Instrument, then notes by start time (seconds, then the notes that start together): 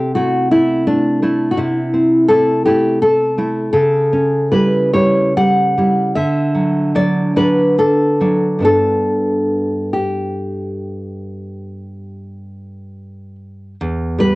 nylon-string guitar
Already playing: C3 C4 G4
0.15 A3 E4 F#4
0.51 A3 E4
0.87 A3 D4
1.22 A3 E4
1.51 F#4
1.57 C3 E4
1.94 C4
2.28 A3 E4 A4
2.65 A3 E4 G4
3.02 A3 A4
3.38 A3 E4
3.73 C#3 A4
4.13 C#4
4.51 G3 E4 B4
4.93 G3 E4 C#5
5.37 G3 F#5
5.78 G3 E4
6.15 D3 E5
6.55 F#3
6.95 F#3 D4 D5
7.36 F#3 D4 B4
7.78 D4 A4
8.21 F#3 D4
8.59 G2 B3 D4
8.65 A4
9.93 G4
13.81 E2
14.19 G3 B4